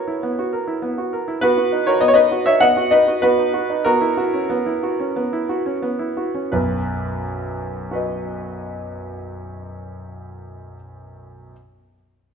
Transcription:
0.00 0.22 B3 medium
0.00 0.16 A#4 medium
0.00 1.11 C#5 medium
0.08 0.31 E4 medium
0.23 0.81 B3 medium
0.39 0.62 F#4 medium
0.53 0.76 A#4 medium
0.67 0.91 E4 medium
0.82 1.39 B3 medium
0.98 1.21 F#4 medium
1.13 1.36 A#4 medium
1.28 1.42 E4 medium
1.41 2.00 B3 medium
1.41 1.56 F#4 medium
1.41 1.86 B4 loud
1.58 1.81 F#4 medium
1.72 1.96 D#4 medium
1.87 2.11 F#4 medium
1.87 2.01 A#4 medium
1.87 2.01 C#5 medium
2.01 2.60 B3 medium
2.01 2.08 D#5 loud
2.08 2.15 C#5 loud
2.14 2.40 D#4 medium
2.14 2.44 B4 medium
2.14 2.46 D#5 loud
2.32 2.56 F#4 medium
2.46 2.70 D#4 medium
2.46 2.60 C#5 medium
2.46 2.61 E5 loud
2.60 3.21 B3 medium
2.60 2.89 D#5 medium
2.60 2.91 F#5 loud
2.77 3.01 F#4 medium
2.91 3.16 D#4 medium
2.91 3.20 B4 medium
2.91 3.22 D#5 loud
3.08 3.22 F#4 medium
3.22 3.84 B3 medium
3.22 3.52 F#4 medium
3.22 3.85 B4 loud
3.38 3.63 D#4 medium
3.54 3.79 F#4 medium
3.70 3.85 D#4 medium
3.84 4.48 B3 medium
3.84 4.16 F#4 medium
3.84 6.17 A#4 loud
4.01 4.27 E4 medium
4.17 4.43 F#4 medium
4.34 4.59 C#4 medium
4.50 5.15 B3 medium
4.66 4.92 E4 medium
4.83 5.09 F#4 medium
5.00 5.26 C#4 medium
5.16 5.81 B3 medium
5.33 5.59 E4 medium
5.49 5.76 F#4 medium
5.66 5.93 C#4 medium
5.82 6.50 B3 medium
5.99 6.28 E4 medium
6.17 6.45 F#4 medium
6.34 6.52 C#4 medium
6.52 10.75 B1 medium
6.52 10.75 F#2 medium
6.52 7.91 B4 medium
7.91 10.75 F#4 medium
7.91 10.76 B4 medium
7.91 10.77 D#5 medium

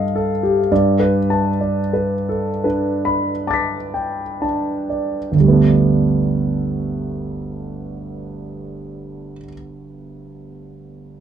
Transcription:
0.00 0.67 G2 soft
0.00 0.15 A4 soft
0.00 0.73 D#5 soft
0.00 0.73 F5 soft
0.15 0.60 A4 soft
0.43 0.71 G4 soft
0.72 5.30 G2 soft
0.72 1.18 D5 soft
1.00 1.48 B4 soft
1.30 1.80 A5 soft
1.61 2.13 D5 soft
1.93 2.50 B4 soft
2.29 2.65 A4 soft
2.64 3.30 D4 soft
2.64 3.30 B4 soft
3.05 3.75 B5 soft
3.47 4.22 A5 soft
3.47 5.29 D6 soft
3.47 5.31 A6 soft
3.53 5.32 B6 soft
3.94 4.43 G5 soft
4.42 5.16 D4 soft
4.42 5.16 A5 soft
4.90 5.33 D5 soft
5.32 9.31 G1 soft
5.36 9.36 D2 soft
5.40 9.40 G3 soft
5.44 9.44 A3 soft
5.44 9.48 B3 soft
5.53 9.53 D4 soft

